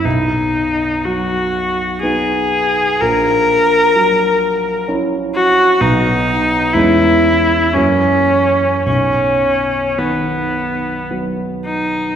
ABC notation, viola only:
X:1
M:3/4
L:1/8
Q:1/4=61
K:B
V:1 name="Viola"
D2 F2 G2 | A4 z F | D2 E2 C2 | C2 B,2 z D |]